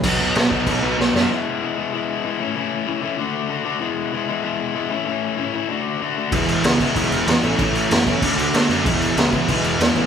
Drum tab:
CC |x-x-x---|--------|--------|--------|
SD |--o---oo|--------|--------|--------|
BD |o--oo---|--------|--------|--------|

CC |--------|xxxxxxxx|xxxxxxxx|xxxxxxxx|
SD |--------|--o---o-|--o---o-|--o---o-|
BD |--------|o--oo---|o--oo---|o--oo---|